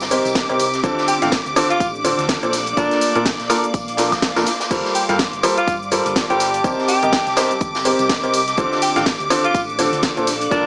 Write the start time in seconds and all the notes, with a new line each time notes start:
Already playing: G1 C4 G4 D6
0.01 snare, tambourine, shaker
0.11 C3 D#4 G4 A#4 C5, open hi-hat, shaker
0.25 C2, closed hi-hat, tambourine, shaker
0.35 kick, snare, closed hi-hat, shaker
0.49 C2 C3 D#4 G4 A#4 C5, closed hi-hat, shaker
0.60 open hi-hat, tambourine, shaker
0.74 snare, closed hi-hat, shaker
0.84 D2 D3 D4 F4 A4 C5, kick, closed hi-hat, tambourine, shaker
0.98 snare, shaker
1.08 G4, open hi-hat, tambourine, shaker
1.21 A1 D3 D4 F4 G4 A4 D5 F5, snare, closed hi-hat, shaker
1.32 kick, snare, closed hi-hat, tambourine, shaker
1.46 D2, closed hi-hat, shaker
1.51 F5
1.56 D3 D4 F4 A4 C5, open hi-hat, tambourine, high woodblock, shaker
1.70 F4, closed hi-hat, shaker
1.80 A1, kick, closed hi-hat, tambourine, shaker
1.95 shaker
2.04 D3 D4 F4 A4 C5, open hi-hat, tambourine, shaker
2.19 D2, snare, closed hi-hat, shaker
2.29 kick, snare, closed hi-hat, tambourine, shaker
2.43 A#1 A#2 D4 F4 A4 C5, closed hi-hat, shaker
2.53 A#3, snare, open hi-hat, tambourine, shaker
2.66 closed hi-hat, shaker
2.77 A#1 A#2 D4 F4 A4 A#4, kick, closed hi-hat, tambourine, shaker
2.91 snare, closed hi-hat, shaker
3.01 open hi-hat, tambourine, shaker
3.15 A#2 D4 F4 A4 A#4, closed hi-hat, shaker
3.25 kick, snare, closed hi-hat, tambourine, shaker
3.33 C6
3.40 A#1, snare, closed hi-hat, shaker
3.50 A#2 D4 F4 A4 A#4 D6, snare, open hi-hat, tambourine, high woodblock, shaker
3.64 closed hi-hat, shaker
3.74 A#1, kick, closed hi-hat, tambourine, shaker
3.88 closed hi-hat, shaker
3.97 A#2 D4 F4 A4 A#4, snare, open hi-hat, tambourine, shaker
4.12 F1, kick, snare, closed hi-hat, tambourine, high woodblock, shaker
4.22 kick, snare, closed hi-hat, tambourine, shaker
4.36 F1 A#2 D4 F4 A4 A#4, snare, closed hi-hat, tambourine, shaker
4.46 snare, open hi-hat, tambourine, shaker
4.60 snare, closed hi-hat, tambourine, shaker
4.71 G1 G3 F4 G4 A4 A#4 C5 D6, kick, closed hi-hat, crash, tambourine, shaker
4.85 snare, shaker
4.95 G4 D5, open hi-hat, tambourine, shaker
5.09 G2 G3 F4 G4 A4 A#4 F5, snare, closed hi-hat, shaker
5.19 kick, snare, closed hi-hat, tambourine, shaker
5.33 G1, closed hi-hat, shaker
5.43 G3 F4 A4 A#4 C5 A5, open hi-hat, tambourine, high woodblock, shaker
5.58 F4, closed hi-hat, shaker
5.67 G2, kick, closed hi-hat, tambourine, shaker
5.82 shaker
5.91 G3 F4 A4 A#4 C5, open hi-hat, tambourine, shaker
6.06 G1, closed hi-hat, shaker
6.16 kick, snare, closed hi-hat, tambourine, shaker
6.30 G1 G3 F4 G4 A4 A#4 C5, closed hi-hat, shaker
6.40 snare, open hi-hat, tambourine, shaker
6.54 closed hi-hat, shaker
6.64 C2 C3 C4 D#4 G4 A#4 C5, kick, closed hi-hat, tambourine, shaker
6.79 snare, shaker
6.88 G4, open hi-hat, tambourine, shaker
7.03 G1 C3 D#4 G4 A#4 D#5, closed hi-hat, shaker
7.13 kick, snare, closed hi-hat, tambourine, shaker
7.27 C2, snare, closed hi-hat, shaker
7.36 C3 D#4 G4 A#4 C5, snare, open hi-hat, tambourine, high woodblock, shaker
7.51 closed hi-hat, shaker
7.61 G1, kick, closed hi-hat, tambourine, shaker
7.75 snare, tambourine, shaker
7.85 C3 D#4 G4 A#4 C5, open hi-hat, shaker
7.99 C2, closed hi-hat, tambourine, shaker
8.09 kick, snare, closed hi-hat, tambourine, shaker
8.23 C2 C3 D#4 G4 A#4 C5, closed hi-hat, shaker
8.34 open hi-hat, tambourine, shaker
8.48 snare, closed hi-hat, shaker
8.57 D2 D3 D4 F4 A4 C5, kick, closed hi-hat, tambourine, shaker
8.72 A4, snare, shaker
8.82 G4, open hi-hat, tambourine, shaker
8.96 A1 D3 D4 F4 G4 A4 F5, snare, closed hi-hat, shaker
9.06 kick, snare, closed hi-hat, tambourine, shaker
9.14 F5
9.20 D2, closed hi-hat, shaker
9.30 D3 D4 F4 A4 C5, open hi-hat, tambourine, high woodblock, shaker
9.35 D5
9.44 F4, closed hi-hat, shaker
9.55 A1, kick, closed hi-hat, tambourine, shaker
9.69 shaker
9.79 D3 D4 F4 A4 C5, open hi-hat, tambourine, shaker
9.93 D2, closed hi-hat, shaker
10.03 kick, snare, closed hi-hat, tambourine, shaker
10.17 A#1 A#2 D4 F4 A4 C5, closed hi-hat, shaker
10.27 A#3, snare, open hi-hat, tambourine, shaker
10.41 closed hi-hat, shaker
10.51 A#1 A#2 D4 F4 A4 A#4, kick, closed hi-hat, tambourine, shaker